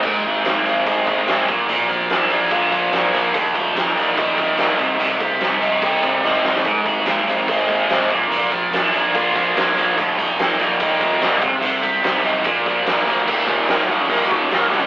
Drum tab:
CC |x---------------|----------------|----------------|----------------|
HH |--x-x-x-x-x-x-x-|x-x-x-x-x-x-x-x-|x-x-x-x-x-x-x-x-|x-x-x-x-x-x-----|
SD |----o-------o---|----o--o----o---|----o-------o---|----o-------o-oo|
BD |o-o-----o-o---o-|--o-----o-o-----|o-o-----o-o---o-|--o-----o-o-----|

CC |----------------|----------------|----------------|----------------|
HH |x-x-x-x-x-x-x-x-|x-x-x-x-x-x-x-x-|x-x-x-x-x-x-x-x-|x-x-x-x-x-x-x-x-|
SD |----o-------o---|----o-------o---|----o-------o---|----o-------o---|
BD |o-o-----o-o---o-|--o-----o-o-----|o-o-----o-o---o-|--o-----o-o-----|

CC |x---------------|
HH |--o-o-o-o-o-o-o-|
SD |----o-------oo--|
BD |o-o---o---o-----|